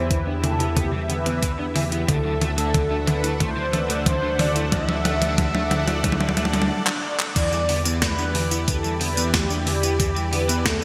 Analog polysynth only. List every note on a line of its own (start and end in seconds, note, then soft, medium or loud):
0.11 0.25 B4 loud
0.44 0.78 A4 medium
0.77 0.91 G4 medium
1.10 1.72 B4 medium
2.09 2.55 A4 medium
2.58 3.09 A4 medium
3.08 3.38 B4 medium
3.41 3.74 C5 loud
3.74 3.90 B4 medium
3.90 3.97 D5 medium
4.07 4.37 C5 loud
4.40 4.54 D5 loud
4.73 6.66 E5 loud
7.36 8.04 D5 loud
8.02 8.70 B4 loud
8.68 9.02 A4 loud
9.01 9.35 B4 loud
9.34 9.98 G4 loud
10.00 10.34 G4 loud
10.33 10.63 B4 loud
10.66 10.84 A4 medium